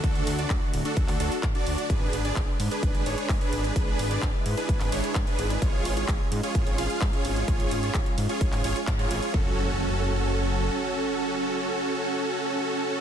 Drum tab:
RD |--x---x---x---x-|--x---x---x---x-|--x---x---x---x-|--x---x---x---x-|
HH |xxoxx-oxxooxxxox|x-oxx-oxxxoxoxox|x-oxx-oxxooxxxox|x-oxx-oxxxoxoxox|
CP |----x----x--x---|----x-------x---|----x----x--x---|----x-------x---|
BD |o---o---o---o---|o---o---o---o---|o---o---o---o---|o---o---o---o---|

RD |--x---x---x---x-|----------------|----------------|
HH |xxoxxxoxxooxxxox|----------------|----------------|
CP |----x----x--x---|----------------|----------------|
BD |o---o---o---o---|o---------------|----------------|